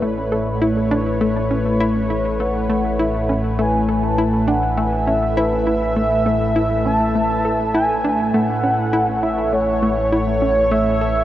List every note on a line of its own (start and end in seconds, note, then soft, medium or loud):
0.00 8.31 A1 medium
0.00 11.24 A2 loud
0.00 11.24 A3 medium
0.00 0.24 A3 medium
0.00 11.24 E4 medium
0.00 11.24 B4 medium
0.00 3.88 C#5 medium
0.00 0.34 C#5 medium
0.32 0.47 A4 medium
0.32 0.56 E5 medium
0.55 0.65 F#5 medium
0.62 0.83 E4 loud
0.62 0.75 E5 medium
0.73 0.84 D5 medium
0.82 0.91 E5 medium
0.91 1.06 D4 loud
1.21 1.35 A3 loud
1.51 1.59 C#4 medium
1.80 2.02 E4 loud
1.80 2.41 C#5 loud
2.10 2.25 E4 medium
2.40 2.49 A3 medium
2.40 3.01 F#5 loud
2.69 2.84 A3 loud
2.99 3.08 E4 loud
2.99 3.44 E5 loud
3.29 3.51 C#4 medium
3.58 3.80 A3 loud
3.58 4.05 G#5 loud
3.85 4.03 A4 medium
3.85 8.64 E5 medium
4.03 4.49 A5 loud
4.18 4.40 E4 loud
4.48 4.62 D4 loud
4.48 4.79 F#5 loud
4.77 4.92 A3 loud
4.77 5.06 G#5 loud
5.07 5.16 C#4 medium
5.07 5.38 E5 loud
5.36 5.59 E4 loud
5.36 5.95 B4 loud
5.67 5.81 E4 medium
5.96 6.05 A3 medium
5.96 6.81 E5 loud
6.26 6.40 A3 loud
6.56 6.64 E4 loud
6.85 7.07 C#4 medium
6.85 7.70 A5 loud
7.15 7.37 A3 loud
7.45 7.59 A4 medium
7.74 7.96 E4 loud
7.74 8.35 G#5 loud
8.04 8.19 D4 loud
8.34 11.24 A1 medium
8.34 8.48 A3 loud
8.34 9.22 F#5 loud
8.61 8.72 C#4 medium
8.61 11.24 C#5 medium
8.93 9.15 E4 loud
9.23 9.37 E4 medium
9.23 9.54 E5 loud
9.53 9.61 A3 medium
9.53 10.11 C#5 loud
9.83 9.97 A3 loud
10.12 10.21 E4 loud
10.12 10.73 C#5 loud
10.42 10.64 C#4 medium
10.71 10.93 A3 loud
10.71 11.00 E5 loud
11.01 11.16 A4 medium
11.01 11.24 E5 loud